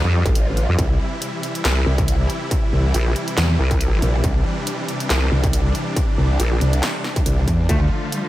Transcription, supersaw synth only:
0.00 0.75 D3 medium
0.00 0.75 F3 medium
0.00 0.75 G3 medium
0.00 0.75 F4 medium
0.79 7.65 C3 medium
0.79 7.65 E3 medium
0.79 7.65 G3 medium
0.79 4.20 E4 medium
4.24 7.66 D4 medium
7.69 8.29 D3 medium
7.69 8.29 F3 medium
7.69 8.29 A3 medium
7.69 8.29 F4 medium

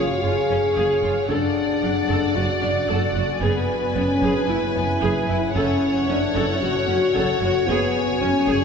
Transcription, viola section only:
0.00 0.22 G#4 soft
0.24 0.32 F4 soft
0.50 0.58 C#4 soft
0.76 1.01 G#4 soft
1.03 1.11 F4 soft
1.29 1.54 A4 soft
1.82 1.90 D4 soft
2.09 2.34 A4 soft
2.35 2.43 F#4 soft
2.62 2.70 D4 soft
2.88 3.14 A4 soft
3.15 3.23 F#4 soft
3.42 3.67 G#4 soft
3.95 4.03 B3 soft
4.22 4.47 G#4 soft
4.49 4.57 E4 soft
4.76 4.84 B3 soft
5.03 5.27 G#4 medium
5.29 5.37 E4 soft
5.56 5.80 A4 medium
6.09 6.17 C#4 soft
6.35 6.60 A4 soft
6.62 6.70 F#4 soft
6.88 6.96 C#4 soft
7.15 7.40 A4 medium
7.43 7.51 F#4 medium
7.70 7.94 G#4 medium
8.22 8.30 C#4 soft
8.49 8.64 G#4 medium

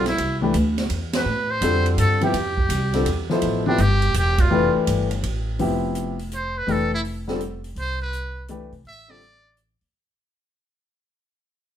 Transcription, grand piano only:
0.41 0.53 E3 medium
0.41 0.53 A3 medium
0.41 0.53 D4 medium
0.41 0.53 G4 medium
0.41 0.54 B4 medium
1.62 2.17 D3 medium
1.62 2.17 G3 medium
1.62 2.18 C4 medium
1.62 2.18 F4 medium
1.62 2.18 A4 medium
2.21 2.33 C3 medium
2.21 2.33 F3 medium
2.21 2.33 B3 medium
2.21 2.33 E4 medium
2.21 2.34 G4 medium
2.93 3.05 D3 medium
2.93 3.05 G3 medium
2.93 3.05 C4 medium
2.93 3.06 F4 medium
2.93 3.06 A4 medium
3.29 3.76 B2 medium
3.29 3.65 F3 medium
3.29 3.66 E4 medium
3.29 3.77 A4 medium
3.29 3.77 C5 medium
3.66 3.77 C3 medium
3.66 3.78 F3 medium
3.66 3.78 B3 medium
3.66 3.78 E4 medium
3.66 3.78 G4 medium
4.50 5.06 E3 medium
4.50 5.06 A3 medium
4.50 5.06 D4 medium
4.50 5.06 G4 medium
4.50 5.07 B4 medium
5.59 6.14 C3 medium
5.59 6.15 F3 medium
5.59 6.15 B3 medium
5.59 6.15 E4 medium
5.59 6.15 G4 medium
6.67 6.89 E3 medium
6.67 6.89 A3 medium
6.67 6.89 D4 medium
6.67 6.90 G4 medium
6.67 6.90 B4 medium
7.27 7.39 D3 medium
7.27 7.39 G3 medium
7.27 7.39 C4 medium
7.27 7.39 F4 medium
7.27 7.39 A4 medium
8.49 8.70 E3 medium
8.49 8.70 A3 medium
8.49 8.70 D4 medium
8.49 8.71 G4 medium
8.49 8.71 B4 medium
9.08 9.19 D3 medium
9.08 9.19 G3 medium
9.08 9.20 C4 medium
9.08 9.20 F4 medium
9.08 9.20 A4 medium

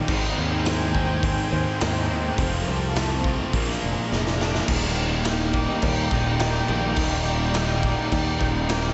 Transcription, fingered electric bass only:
0.08 0.33 G#1 medium
0.38 1.35 D#2 medium
1.52 1.65 D#2 medium
1.82 2.30 D#2 medium
2.38 2.63 F1 medium
2.68 3.40 C2 medium
3.53 3.78 A#1 loud
3.83 3.95 F1 medium
4.12 4.60 F1 medium
4.69 5.65 D#1 medium
5.83 6.07 D#2 loud
6.11 6.60 D#1 medium
6.69 6.93 A#1 loud
6.97 7.94 D#1 loud
8.12 8.37 D#2 loud
8.41 8.89 D#1 medium

